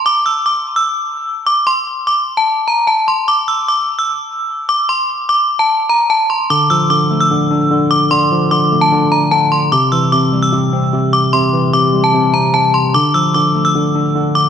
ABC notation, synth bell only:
X:1
M:4/4
L:1/16
Q:1/4=149
K:Dm
V:1 name="Synth bell"
d'2 e'2 d'3 e'6- e' d'2 | c'4 d'3 a3 b2 a2 c'2 | d'2 e'2 d'3 e'6- e' d'2 | c'4 d'3 a3 b2 a2 c'2 |
d'2 e'2 d'3 e'6- e' d'2 | c'4 d'3 a3 b2 a2 c'2 | d'2 e'2 d'3 e'6- e' d'2 | c'4 d'3 a3 b2 a2 c'2 |
d'2 e'2 d'3 e'6- e' d'2 |]